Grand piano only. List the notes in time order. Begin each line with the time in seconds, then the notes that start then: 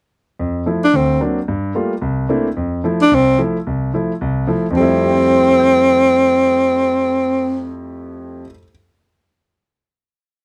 0.39 F2
0.66 F3 A3 E4
0.94 D2
1.21 F#3 A#3 C4 D4
1.48 G2
1.75 G3 A3 A#3 F4
2.02 C2
2.29 A3 A#3 C4 D4 E4
2.57 F2
2.84 F3 A3 E4
3.11 C2
3.38 F3 A3 E4
3.67 C2
3.94 F3 A3 E4
4.21 C2
4.47 F3 A3 E4
4.71 F2 F3
4.76 G3 A3
4.82 E4
5.03 G4
5.10 C5
5.19 E5
5.28 G5
5.37 C6
5.48 E6
5.60 G6